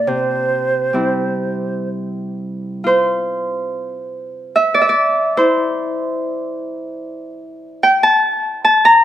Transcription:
Already playing: harp A#2 A#3 D4 F4
0.07 harp C3, flute C5
0.93 harp G3 C4 E4
2.84 harp F4 C5
4.56 harp E5
4.74 harp D5
4.81 harp E5
4.89 harp D5
5.37 harp E4 C5
7.83 harp G5
8.03 harp A5
8.65 harp A5
8.85 harp A#5

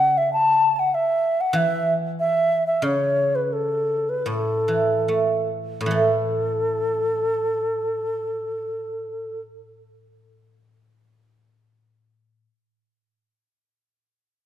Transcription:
Already playing: guzheng C#3, xiao F#5
0.18 xiao E5
0.33 xiao A5
0.76 xiao F#5 A5
0.94 xiao E5
1.41 xiao F#5
1.53 guzheng E3, xiao E5
2.20 xiao E5
2.67 xiao E5
2.82 guzheng C#3, xiao C#5
3.35 xiao B4
3.53 xiao A4
4.09 xiao B4
4.26 guzheng A2, xiao A4
4.68 guzheng E3
5.08 guzheng A3
5.81 guzheng A2
5.86 guzheng E3
5.91 guzheng A3, xiao A4

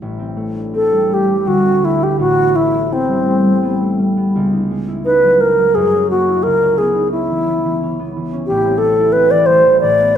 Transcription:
Already playing: harp G3 A3 B3 D4 G4 A4 B4 D5 G5 A5
0.02 harp A1
0.19 harp C4
0.37 harp A3
0.55 harp D4
0.74 harp C4, alto flute A4
0.92 harp G3
1.10 harp A3, alto flute G4
1.27 harp G3
1.45 harp D2, alto flute F#4
1.63 harp C4
1.83 harp A3, alto flute E4
1.99 harp E4
2.03 alto flute G4
2.19 harp A1, alto flute F#4
2.37 harp B3
2.55 harp A3, alto flute E4
2.72 harp E4
2.90 harp B3, alto flute C4
3.08 harp G3
3.26 harp A3
3.44 harp G3
3.63 harp B3
3.81 harp A3
3.99 harp G3
4.17 harp B3
4.36 harp C#2
4.53 harp D#4
4.71 harp G#3
4.88 harp E4
5.05 harp D#4, alto flute B4
5.24 harp F#3
5.40 harp G#3, alto flute A#4
5.58 harp F#3
5.75 harp F#2, alto flute G#4
5.94 harp C#4
6.10 harp A#3, alto flute F#4
6.28 harp E4
6.43 harp C#2, alto flute A#4
6.62 harp C#4
6.78 harp B3, alto flute G#4
6.95 harp D#4
7.12 harp C#4, alto flute E4
7.30 harp E3
7.48 harp B3
7.65 harp E3
7.83 harp C#4
7.99 harp B3
8.16 harp E3
8.33 harp C#4
8.46 harp A1, alto flute G4
8.65 harp C4
8.78 alto flute A4
8.82 harp A3
8.99 harp E4
9.12 harp C4, alto flute B4
9.31 harp E3, alto flute D5
9.46 harp A3, alto flute C5
9.81 harp A1, alto flute D5
10.00 harp B3

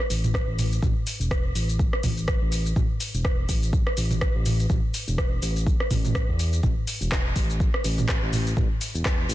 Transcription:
0.10 analog synth bass A1, open hi-hat, shaker
0.24 mid tom, shaker
0.34 kick, cross-stick, shaker
0.48 analog synth bass A1
0.59 mid tom, open hi-hat, shaker
0.72 shaker
0.82 analog synth bass A1, kick, mid tom, shaker
1.07 open hi-hat, shaker
1.20 analog synth bass E1, shaker
1.31 kick, cross-stick, shaker
1.55 analog synth bass A1, open hi-hat, shaker
1.69 shaker
1.79 kick, shaker
1.93 cross-stick
2.03 analog synth bass A1, kick, mid tom, open hi-hat, shaker
2.17 shaker
2.28 kick, cross-stick, shaker
2.42 analog synth bass A1
2.52 open hi-hat, shaker
2.66 shaker
2.76 analog synth bass A1, kick, mid tom, shaker
3.00 open hi-hat, shaker
3.14 analog synth bass E1, shaker
3.25 kick, cross-stick, shaker
3.49 analog synth bass A1, kick, open hi-hat, shaker
3.63 shaker
3.73 kick, shaker
3.87 cross-stick
3.97 analog synth bass A1, open hi-hat, shaker
4.11 mid tom, shaker
4.21 kick, cross-stick, shaker
4.35 analog synth bass A1
4.46 mid tom, open hi-hat, shaker
4.60 shaker
4.70 analog synth bass A1, kick, mid tom, shaker
4.94 open hi-hat, shaker
5.08 analog synth bass E1, shaker
5.18 kick, cross-stick, shaker
5.42 analog synth bass A1, open hi-hat, shaker
5.56 shaker
5.67 kick, shaker
5.80 cross-stick
5.91 analog synth bass A1, kick, mid tom, open hi-hat, shaker
6.05 mid tom, shaker
6.15 kick, cross-stick, shaker
6.29 analog synth bass E2
6.39 open hi-hat, shaker
6.53 shaker
6.63 analog synth bass A1, kick, mid tom, shaker
6.87 open hi-hat, shaker
7.01 analog synth bass E1, shaker
7.12 kick, cross-stick, clap, shaker
7.36 analog synth bass A1, kick, open hi-hat, shaker
7.50 shaker
7.60 kick, shaker
7.74 cross-stick
7.84 analog synth bass A1, open hi-hat, shaker
7.98 mid tom, shaker
8.09 kick, cross-stick, clap, shaker
8.22 analog synth bass A1
8.33 mid tom, open hi-hat, shaker
8.47 shaker
8.57 analog synth bass A1, kick, mid tom, shaker
8.81 open hi-hat, shaker
8.94 analog synth bass E1, shaker
9.05 kick, cross-stick, clap, shaker
9.29 analog synth bass A1, open hi-hat, shaker

